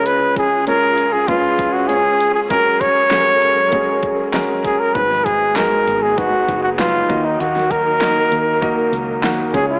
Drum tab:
HH |x-x-x-x-x-x-x-x-|x-x-x-x-x-x-x-x-|x-x-x-x-x-x-x-x-|x-x-x-x-x-x-x-x-|
CP |----------------|----x-------x---|----x-------x---|----x-------x---|
SD |----------------|----o-------o---|-o--o-------o---|-o--o-------o---|
BD |--o-----o-o-----|o-o-----o-o---o-|o-o-----o-o---o-|--o-----o-----o-|